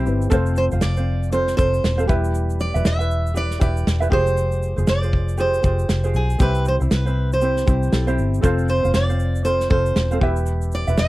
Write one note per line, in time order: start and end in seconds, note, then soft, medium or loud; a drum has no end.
0.00 0.05 G3 medium
0.00 0.06 C4 medium
0.00 0.30 C4 medium
0.00 0.07 E4 medium
0.00 0.31 E4 medium
0.00 0.29 G4 medium
0.00 0.31 C5 medium
0.00 0.33 C5 medium
0.05 0.30 G1 medium
0.05 0.31 G3 medium
0.05 0.30 C4 medium
0.05 0.32 E4 medium
0.05 0.32 B4 medium
0.05 shaker soft
0.22 shaker medium
0.30 0.69 F1 loud
0.30 2.05 A3 medium
0.30 0.72 C4 medium
0.30 2.06 C4 medium
0.30 0.72 F4 medium
0.30 2.06 F4 medium
0.30 0.71 A4 medium
0.30 0.70 C5 loud
0.30 kick loud
0.30 shaker medium
0.34 2.07 C5 medium
0.46 shaker soft
0.56 0.64 C5 medium
0.56 shaker medium
0.72 0.81 F1 loud
0.72 0.98 C4 soft
0.72 0.97 F4 soft
0.72 0.96 C5 medium
0.72 shaker medium
0.81 1.55 F1 loud
0.81 1.32 D5 loud
0.81 snare loud
0.81 shaker medium
0.97 1.32 C4 medium
0.97 1.33 F4 medium
0.97 1.32 C5 medium
0.97 shaker soft
1.23 shaker soft
1.32 1.57 C4 medium
1.32 1.58 F4 medium
1.32 1.56 A4 medium
1.32 1.56 C5 medium
1.32 1.58 C5 medium
1.32 shaker medium
1.47 snare soft
1.47 shaker medium
1.57 1.82 F1 loud
1.57 1.97 C4 medium
1.57 1.97 F4 medium
1.57 1.98 A4 medium
1.57 2.05 C5 medium
1.57 1.96 C5 medium
1.57 kick loud
1.57 shaker medium
1.74 shaker medium
1.84 2.07 E1 medium
1.84 snare loud
1.84 shaker medium
1.97 2.08 C4 medium
1.97 2.08 F4 medium
1.97 2.07 A4 medium
1.97 2.08 C5 medium
1.97 shaker medium
2.07 2.71 E1 medium
2.07 4.07 G3 medium
2.07 4.08 B3 medium
2.07 2.75 E4 medium
2.07 4.08 E4 medium
2.07 3.34 G4 medium
2.07 2.74 B4 medium
2.07 4.09 B4 medium
2.07 2.73 E5 medium
2.07 kick loud
2.07 shaker soft
2.24 shaker medium
2.35 shaker medium
2.50 shaker medium
2.60 2.86 D5 loud
2.60 shaker medium
2.74 2.85 E1 loud
2.74 3.00 E4 soft
2.74 2.99 B4 soft
2.74 2.98 E5 medium
2.74 shaker medium
2.85 3.58 E1 loud
2.85 3.37 E5 loud
2.85 snare loud
2.85 shaker medium
2.99 3.34 E4 medium
2.99 3.35 B4 medium
2.99 3.35 E5 medium
2.99 shaker medium
3.11 shaker soft
3.27 shaker medium
3.34 3.59 E4 medium
3.34 3.58 G4 medium
3.34 3.59 B4 medium
3.34 3.60 D5 loud
3.34 3.61 E5 medium
3.34 shaker medium
3.51 snare soft
3.51 shaker medium
3.59 3.85 E1 loud
3.59 4.00 E4 medium
3.59 4.01 G4 medium
3.59 4.00 B4 medium
3.59 4.08 D5 loud
3.59 3.99 E5 medium
3.59 kick loud
3.59 shaker medium
3.77 shaker medium
3.87 4.10 E1 medium
3.87 snare loud
3.87 shaker medium
4.00 4.10 E4 medium
4.00 4.09 G4 medium
4.00 4.11 B4 medium
4.00 4.11 E5 medium
4.00 shaker medium
4.09 4.74 F1 loud
4.09 6.10 G#3 medium
4.09 6.10 F4 medium
4.09 4.77 F4 medium
4.09 4.76 G4 medium
4.09 6.11 G4 medium
4.09 4.76 G#4 medium
4.09 4.76 C5 medium
4.09 6.12 C5 medium
4.09 4.89 C5 loud
4.09 kick loud
4.27 shaker medium
4.37 shaker medium
4.52 shaker medium
4.62 shaker medium
4.76 4.87 F1 medium
4.76 5.03 F4 soft
4.76 5.02 G#4 soft
4.76 5.00 C5 medium
4.76 shaker medium
4.87 5.60 F1 loud
4.87 5.40 D5 medium
4.87 snare loud
4.87 shaker medium
5.02 5.37 F4 medium
5.02 5.38 G#4 medium
5.02 5.37 C5 medium
5.02 shaker medium
5.13 kick medium
5.29 shaker medium
5.37 5.62 F4 medium
5.37 5.61 G4 medium
5.37 5.64 G#4 medium
5.37 5.64 C5 medium
5.37 6.18 C5 medium
5.37 shaker medium
5.54 shaker medium
5.63 5.87 F1 medium
5.63 6.04 F4 medium
5.63 6.04 G4 medium
5.63 6.03 G#4 medium
5.63 6.03 C5 medium
5.63 kick medium
5.63 shaker medium
5.79 shaker medium
5.89 6.13 F1 medium
5.89 snare loud
5.89 shaker medium
6.04 6.40 F4 medium
6.04 6.38 G4 medium
6.04 6.40 G#4 medium
6.04 6.40 C5 medium
6.04 shaker soft
6.14 6.38 B1 medium
6.14 6.42 G#4 medium
6.14 shaker soft
6.30 shaker medium
6.39 6.78 C2 loud
6.39 7.89 C4 medium
6.39 6.81 C4 medium
6.39 7.90 E4 medium
6.39 6.80 E4 medium
6.39 6.81 G4 medium
6.39 7.90 G4 medium
6.39 6.65 B4 medium
6.39 6.79 C5 medium
6.39 kick loud
6.39 shaker medium
6.43 7.91 E5 medium
6.55 shaker medium
6.65 6.75 C5 medium
6.65 shaker medium
6.80 6.91 C2 medium
6.80 7.07 C4 soft
6.80 7.06 E4 soft
6.80 7.04 C5 soft
6.80 shaker medium
6.91 7.64 C2 loud
6.91 7.33 B4 medium
6.91 snare loud
6.91 shaker medium
7.05 7.41 C4 soft
7.05 7.42 E4 medium
7.05 7.42 C5 medium
7.05 shaker soft
7.32 8.15 C5 medium
7.32 shaker soft
7.41 7.66 C4 medium
7.41 7.67 E4 medium
7.41 7.65 G4 medium
7.41 7.68 C5 medium
7.41 shaker medium
7.57 snare soft
7.57 shaker medium
7.66 7.91 C2 loud
7.66 8.07 C4 medium
7.66 8.07 E4 medium
7.66 8.08 G4 medium
7.66 8.06 C5 medium
7.66 kick loud
7.66 shaker medium
7.83 shaker medium
7.92 8.17 B1 medium
7.92 8.40 C4 medium
7.92 8.44 E4 medium
7.92 8.44 G4 soft
7.92 8.43 A4 medium
7.92 snare loud
7.92 shaker medium
8.07 8.42 C4 medium
8.07 8.43 E4 medium
8.07 8.42 G4 medium
8.07 8.43 C5 medium
8.07 shaker medium
8.18 8.42 G1 medium
8.18 shaker soft
8.34 shaker medium
8.41 8.81 F1 loud
8.41 10.17 C4 medium
8.41 8.84 C4 loud
8.41 10.18 F4 medium
8.41 8.83 F4 loud
8.41 8.84 A4 medium
8.41 10.19 A4 medium
8.41 8.82 C5 loud
8.41 kick loud
8.41 shaker medium
8.45 10.19 F5 medium
8.58 shaker medium
8.69 8.94 C5 loud
8.69 shaker medium
8.83 8.94 F1 loud
8.83 9.10 C4 soft
8.83 9.09 F4 medium
8.83 9.07 C5 medium
8.83 shaker medium
8.94 9.67 F1 loud
8.94 9.44 D5 loud
8.94 snare medium
8.94 shaker medium
9.09 9.44 C4 soft
9.09 9.45 F4 medium
9.09 9.45 C5 medium
9.09 shaker medium
9.19 shaker medium
9.35 shaker soft
9.44 9.70 C4 medium
9.44 9.71 F4 medium
9.44 9.68 A4 medium
9.44 9.69 C5 loud
9.44 9.71 C5 medium
9.44 shaker medium
9.60 snare soft
9.60 shaker medium
9.70 9.94 F1 loud
9.70 10.11 C4 medium
9.70 10.10 F4 medium
9.70 10.11 A4 medium
9.70 10.18 C5 medium
9.70 10.10 C5 medium
9.70 kick loud
9.86 shaker medium
9.96 10.20 E1 medium
9.96 snare loud
9.96 shaker medium
10.11 10.21 C4 medium
10.11 10.22 F4 medium
10.11 10.20 A4 medium
10.11 10.22 C5 medium
10.11 shaker medium
10.20 10.84 E1 loud
10.20 11.08 B3 medium
10.20 11.08 E4 medium
10.20 10.89 E4 medium
10.20 11.08 G4 medium
10.20 10.87 B4 medium
10.20 10.87 E5 medium
10.20 kick loud
10.24 11.08 E5 medium
10.36 shaker medium
10.46 shaker medium
10.62 shaker medium
10.72 10.99 D5 loud
10.72 shaker medium
10.87 10.98 E1 medium
10.87 11.08 E4 soft
10.87 11.08 B4 soft
10.87 11.08 E5 medium
10.87 shaker medium
10.97 11.08 E1 loud
10.97 11.08 E5 loud
10.97 snare loud
10.97 shaker medium